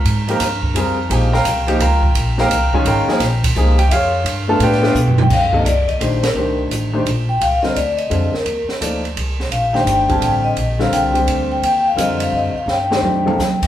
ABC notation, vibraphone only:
X:1
M:3/4
L:1/8
Q:"Swing" 1/4=171
K:Bbdor
V:1 name="Vibraphone"
z6 | z6 | z6 | z6 |
z4 z g | [K:Cdor] f e d e c B- | B z4 g | f e d e2 B- |
B z4 z | f g g a g e- | e f g2 z g | g f e f e f |
g4- g g |]